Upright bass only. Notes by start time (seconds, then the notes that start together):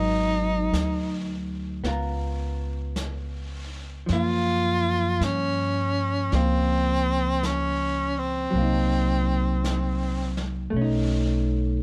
Already playing: G#1
0.72 D2
1.84 C#2
4.09 F#2
5.20 G2
6.32 C#2
8.53 C2
10.73 B1